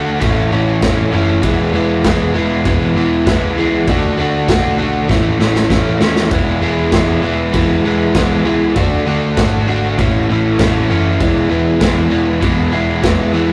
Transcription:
Already playing: picked electric bass D2, overdriven electric guitar D3 A3 D4 F#4
0.20 picked electric bass A1, overdriven electric guitar A2 E3 A3 C#4 E4, kick, crash
0.51 picked electric bass A1, overdriven electric guitar A2 E3 A3 C#4 E4
0.82 picked electric bass A1, overdriven electric guitar A2 E3 A3 C#4 E4, kick, snare, crash
1.12 picked electric bass F#1, overdriven electric guitar A2 E3 A3 C#4 E4
1.43 picked electric bass E1, overdriven electric guitar E3 G#3 B3 E4, kick, crash
1.74 picked electric bass E1, overdriven electric guitar E3 G#3 B3 E4
2.04 picked electric bass E1, overdriven electric guitar E3 G#3 B3 E4, kick, snare, crash
2.34 picked electric bass E1, overdriven electric guitar E3 G#3 B3 E4
2.65 picked electric bass E1, overdriven electric guitar E3 G#3 B3 E4, kick, crash
2.96 picked electric bass E1, overdriven electric guitar E3 G#3 B3 E4
3.26 picked electric bass C#2, overdriven electric guitar E3 G#3 B3 E4, kick, snare, crash
3.57 overdriven electric guitar E3 G#3 B3 E4
3.87 picked electric bass D2, overdriven electric guitar D3 A3 D4 F#4, kick, crash
4.17 picked electric bass D2, overdriven electric guitar D3 A3 D4 F#4
4.48 picked electric bass B1, overdriven electric guitar D3 A3 D4 F#4, kick, snare, crash
4.77 overdriven electric guitar D3 A3 D4 F#4
5.08 picked electric bass A1, overdriven electric guitar A2 E3 A3 C#4 E4, kick, snare
5.38 picked electric bass A1, overdriven electric guitar A2 E3 A3 C#4 E4, snare
5.55 snare
5.69 picked electric bass A1, overdriven electric guitar A2 E3 A3 C#4 E4, kick, snare
6.00 picked electric bass D#2, overdriven electric guitar A2 E3 A3 C#4 E4, snare
6.16 snare
6.31 picked electric bass E1, overdriven electric guitar E3 G#3 B3 E4, kick, crash
6.61 picked electric bass E1, overdriven electric guitar E3 G#3 B3 E4
6.92 picked electric bass E1, overdriven electric guitar E3 G#3 B3 E4, kick, snare, crash
7.21 picked electric bass E1, overdriven electric guitar E3 G#3 B3 E4
7.52 picked electric bass E1, overdriven electric guitar E3 G#3 B3 E4, kick, crash
7.84 picked electric bass E1, overdriven electric guitar E3 G#3 B3 E4
8.15 picked electric bass C#2, overdriven electric guitar E3 G#3 B3 E4, kick, snare, crash
8.45 overdriven electric guitar E3 G#3 B3 E4
8.76 picked electric bass D2, overdriven electric guitar D3 A3 D4 F#4, kick, crash
9.06 picked electric bass D2, overdriven electric guitar D3 A3 D4 F#4
9.37 picked electric bass G#1, overdriven electric guitar D3 A3 D4 F#4, kick, snare, crash
9.67 overdriven electric guitar D3 A3 D4 F#4
9.98 picked electric bass A1, overdriven electric guitar A2 E3 A3 C#4 E4, kick, crash
10.29 picked electric bass A1, overdriven electric guitar A2 E3 A3 C#4 E4
10.58 picked electric bass A1, overdriven electric guitar A2 E3 A3 C#4 E4, kick, snare, crash
10.89 picked electric bass F#1, overdriven electric guitar A2 E3 A3 C#4 E4
11.19 picked electric bass E1, overdriven electric guitar E3 G#3 B3 E4, kick, crash
11.49 picked electric bass E1, overdriven electric guitar E3 G#3 B3 E4
11.80 picked electric bass E1, overdriven electric guitar E3 G#3 B3 E4, kick, snare, crash
12.10 picked electric bass E1, overdriven electric guitar E3 G#3 B3 E4
12.41 picked electric bass E1, overdriven electric guitar E3 G#3 B3 E4, kick, crash
12.72 picked electric bass E1, overdriven electric guitar E3 G#3 B3 E4
13.02 picked electric bass E2, overdriven electric guitar E3 G#3 B3 E4, kick, snare, crash
13.33 overdriven electric guitar E3 G#3 B3 E4

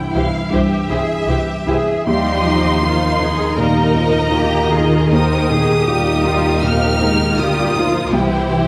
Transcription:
Already playing: felt piano C2 G2 G4 E5, harp C3 E3 C4 C5 G5, cello section E4, violin section G5
0.15 double bass section C2, felt piano E3, viola section E3 G4, violin section G4 C5 F5
0.51 double bass section C2, felt piano G2, viola section E3 E4, violin section G4 C5 E5, cello section G4
0.89 double bass section C2, viola section E3 E4, felt piano E4, harp E4, violin section G4 C5, cello section G#4
1.27 double bass section C2, viola section E3 E4, felt piano G4, cello section G4, violin section G4 C5
1.67 double bass section C2, viola section E3 E4, felt piano E4, violin section G4 C5, cello section G#4, harp E5
2.06 felt piano D#2, double bass section D#2, harp F3, viola section G3 D#4, violin section D#4 D#5 C6, cello section G4
2.45 viola section F3, harp D#4, felt piano D#4
2.83 viola section D#3 D#4, felt piano F4, cello section F4, harp F4, violin section C5
3.20 felt piano D#4, cello section G#4, violin section A#4, harp D#5
3.57 felt piano A#2, viola section G3 D#4, harp A#3, violin section A#4 D#5 A#5, cello section A#4
3.95 viola section F3, felt piano D#4, harp D#4
4.31 viola section D#3 G4, felt piano F4, harp F4, cello section G4, violin section A#4
4.71 felt piano D#4, viola section F4, cello section G#4, harp D#5
5.12 felt piano D#2, viola section D#4, violin section G4 C5 D#6, cello section A#4
5.50 felt piano A#2, harp D#4, cello section G#4, violin section A#4
5.88 viola section G3 D#4, felt piano F4, harp F4, cello section G4
6.25 felt piano D#4, cello section F4, harp D#5
6.63 felt piano A#2, viola section F3, harp A#3, cello section D#4, violin section F6
7.02 viola section G#3, felt piano D#4, harp D#4
7.38 double bass section D2, viola section G3 F4, felt piano F4, violin section F4 D#6, harp F4, cello section G4
7.76 viola section F3, felt piano D#4, cello section F4, harp D#5
8.13 felt piano C2, double bass section C2, harp C3, viola section E3 G4, violin section E4 C5 G5, cello section E4
8.50 harp E3, felt piano E4, viola section E4, cello section G4

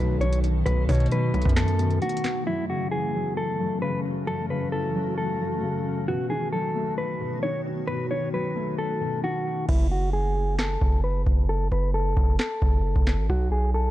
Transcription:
Already playing: grand piano D#3 F#3 A3, ambient pad D#3 A3 B3 F#4, clean electric guitar B4
0.00 808-style bass B1, grand piano B2
0.21 grand piano D#3, clean electric guitar C#5, closed hi-hat
0.33 closed hi-hat
0.44 closed hi-hat
0.66 808-style bass B1, grand piano B2, clean electric guitar B4, ambient pad G#5, kick, closed hi-hat
0.89 808-style bass B2, grand piano D#3, clean electric guitar C#5, kick, closed hi-hat, open hi-hat
0.95 closed hi-hat
1.00 closed hi-hat
1.06 closed hi-hat
1.11 grand piano F#3, clean electric guitar B4, closed hi-hat
1.34 808-style bass B1, grand piano A3, kick, closed hi-hat
1.42 808-style bass F#2, kick, closed hi-hat
1.49 closed hi-hat
1.57 clean electric guitar A4, snare, clap, closed hi-hat
1.68 closed hi-hat
1.79 grand piano B2, closed hi-hat
1.90 closed hi-hat
2.02 grand piano D#3, clean electric guitar F#4, closed hi-hat
2.09 closed hi-hat
2.17 closed hi-hat
2.24 snare, clap, closed hi-hat
2.47 grand piano F#2, ambient pad E3 A3 C#4 F#4, clean electric guitar E4
2.70 grand piano C#3, clean electric guitar F#4
2.91 grand piano E3, clean electric guitar G#4
3.14 grand piano F#3
3.37 clean electric guitar A4
3.60 grand piano F#2
3.82 grand piano C#3, clean electric guitar B4
4.27 grand piano F#2, clean electric guitar A4
4.50 grand piano C#3, clean electric guitar B4
4.72 grand piano E3, clean electric guitar A4
4.95 grand piano F#3
5.18 clean electric guitar A4
5.40 grand piano F#2
5.63 grand piano C#3
6.08 grand piano B2, ambient pad D#3 B3 F#4, clean electric guitar F#4
6.30 grand piano D#3, clean electric guitar G#4
6.52 grand piano F#3, clean electric guitar A4
6.75 grand piano A3
6.98 clean electric guitar B4
7.21 grand piano B2
7.43 grand piano D#3, clean electric guitar C#5
7.88 grand piano B2, ambient pad C#4, clean electric guitar B4
8.11 grand piano D#3, clean electric guitar C#5
8.33 grand piano F#3, clean electric guitar B4
8.56 grand piano A3
8.78 clean electric guitar A4
9.01 grand piano B2
9.23 grand piano D#3, clean electric guitar F#4
9.69 808-style bass F#1, clean electric guitar E4, kick, crash
9.92 clean electric guitar F#4
10.13 clean electric guitar G#4
10.59 clean electric guitar A4, snare, clap
10.81 808-style bass F#1, kick
11.04 clean electric guitar B4
11.26 808-style bass F#1, kick
11.49 clean electric guitar A4
11.72 808-style bass F#1, clean electric guitar B4
11.94 clean electric guitar A4
12.17 808-style bass F#1, kick
12.39 clean electric guitar A4, snare, clap
12.62 808-style bass F#1, kick
12.96 808-style bass F#1, kick
13.07 snare, clap
13.18 808-style bass G#1
13.30 808-style bass B1, clean electric guitar F#4, kick
13.52 clean electric guitar G#4
13.74 clean electric guitar A4

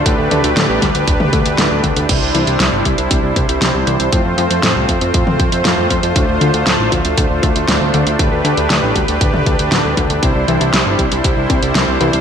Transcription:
Already playing: supersaw synth A3 D4
0.06 analog synth bass D2, synth arpeggio sound A2, supersaw synth G4 B4, kick, closed hi-hat
0.18 analog synth bass D2
0.31 analog synth bass D2, synth arpeggio sound D3, closed hi-hat, mid tom
0.44 analog synth bass D2, closed hi-hat
0.57 analog synth bass D2, synth arpeggio sound A2, snare, closed hi-hat
0.69 analog synth bass A1
0.82 analog synth bass D2, synth arpeggio sound G3, kick, snare, closed hi-hat
0.95 analog synth bass D2, closed hi-hat
1.07 analog synth bass D1, synth arpeggio sound A2, kick, closed hi-hat
1.20 analog synth bass D2, mid tom
1.33 analog synth bass D2, synth arpeggio sound A3, kick, closed hi-hat
1.46 analog synth bass D2, closed hi-hat
1.58 analog synth bass D2, synth arpeggio sound A2, snare, closed hi-hat
1.71 analog synth bass D2
1.84 analog synth bass D2, synth arpeggio sound D3, kick, closed hi-hat, mid tom
1.96 analog synth bass D2, closed hi-hat
2.09 analog synth bass C2, synth arpeggio sound C3, supersaw synth G3 E4 C5, kick, closed hi-hat, crash
2.22 analog synth bass C2
2.35 analog synth bass C2, synth arpeggio sound E3, closed hi-hat
2.47 analog synth bass C2, closed hi-hat
2.60 analog synth bass C2, synth arpeggio sound C3, snare, closed hi-hat
2.73 analog synth bass G1
2.85 analog synth bass C2, synth arpeggio sound G3, kick, closed hi-hat
2.98 analog synth bass C2, closed hi-hat
3.11 analog synth bass C2, synth arpeggio sound C3, kick, closed hi-hat
3.23 analog synth bass C2
3.36 analog synth bass C2, synth arpeggio sound C4, kick, closed hi-hat
3.49 analog synth bass C2, closed hi-hat
3.62 analog synth bass C2, synth arpeggio sound C3, snare, closed hi-hat
3.74 analog synth bass C2
3.87 analog synth bass C2, synth arpeggio sound E3, closed hi-hat
4.00 analog synth bass C2, closed hi-hat
4.12 analog synth bass F2, synth arpeggio sound A2, supersaw synth A3 C4 F4, kick, closed hi-hat
4.25 analog synth bass F2
4.38 analog synth bass F2, synth arpeggio sound F3, closed hi-hat
4.51 analog synth bass F2, closed hi-hat
4.63 analog synth bass F2, synth arpeggio sound A2, snare, closed hi-hat
4.76 analog synth bass C2
4.89 analog synth bass F2, synth arpeggio sound A3, kick, closed hi-hat
5.01 analog synth bass F2, closed hi-hat
5.14 analog synth bass F2, synth arpeggio sound A2, kick, closed hi-hat
5.27 analog synth bass F2, mid tom
5.40 analog synth bass F2, synth arpeggio sound C4, kick, closed hi-hat
5.52 analog synth bass F2, closed hi-hat
5.65 analog synth bass F2, synth arpeggio sound A2, snare, closed hi-hat
5.78 analog synth bass F2
5.90 analog synth bass F2, synth arpeggio sound F3, kick, closed hi-hat
6.03 analog synth bass F2, closed hi-hat
6.16 analog synth bass D2, synth arpeggio sound A2, supersaw synth D4, kick, closed hi-hat
6.29 analog synth bass D2
6.41 analog synth bass D2, synth arpeggio sound D3, closed hi-hat
6.54 analog synth bass D2, closed hi-hat
6.67 analog synth bass D2, synth arpeggio sound A2, snare, closed hi-hat
6.79 analog synth bass A1
6.92 analog synth bass D2, synth arpeggio sound F3, kick, closed hi-hat
7.05 analog synth bass D2, closed hi-hat
7.17 analog synth bass D2, synth arpeggio sound A2, kick, closed hi-hat
7.30 analog synth bass D2
7.43 analog synth bass D2, synth arpeggio sound A3, kick, closed hi-hat
7.56 analog synth bass D2, closed hi-hat
7.68 analog synth bass D2, synth arpeggio sound A2, snare, closed hi-hat
7.81 analog synth bass D2
7.94 analog synth bass D2, synth arpeggio sound D3, closed hi-hat
8.07 analog synth bass D2, closed hi-hat
8.19 analog synth bass D2, synth arpeggio sound A2, supersaw synth G4 B4, kick, closed hi-hat
8.32 analog synth bass D2
8.45 analog synth bass D2, synth arpeggio sound D3, closed hi-hat
8.57 analog synth bass D2, closed hi-hat
8.70 analog synth bass D2, synth arpeggio sound A2, snare, closed hi-hat
8.83 analog synth bass A1
8.96 analog synth bass D2, synth arpeggio sound G3, kick, closed hi-hat
9.08 analog synth bass D2, closed hi-hat
9.21 analog synth bass D2, synth arpeggio sound A2, kick, closed hi-hat
9.34 analog synth bass D2, mid tom
9.46 analog synth bass D2, synth arpeggio sound A3, kick, closed hi-hat
9.59 analog synth bass D2, closed hi-hat
9.72 analog synth bass D2, synth arpeggio sound A2, snare, closed hi-hat
9.85 analog synth bass D2
9.97 analog synth bass D2, synth arpeggio sound D3, kick, closed hi-hat, mid tom
10.10 analog synth bass D2, closed hi-hat
10.23 analog synth bass C2, synth arpeggio sound C3, supersaw synth G3 E4 C5, kick, closed hi-hat
10.35 analog synth bass C2
10.48 analog synth bass C2, synth arpeggio sound E3, closed hi-hat
10.61 analog synth bass C2, closed hi-hat
10.73 analog synth bass C2, synth arpeggio sound C3, snare, closed hi-hat
10.86 analog synth bass G1
10.99 analog synth bass C2, synth arpeggio sound G3, kick, closed hi-hat
11.12 analog synth bass C2, closed hi-hat
11.24 analog synth bass C2, synth arpeggio sound C3, kick, closed hi-hat
11.37 analog synth bass C2
11.50 analog synth bass C2, synth arpeggio sound C4, kick, closed hi-hat
11.63 analog synth bass C2, closed hi-hat
11.75 analog synth bass C2, synth arpeggio sound C3, snare, closed hi-hat
11.88 analog synth bass C2
12.01 analog synth bass C2, synth arpeggio sound E3, closed hi-hat
12.13 analog synth bass C2, closed hi-hat

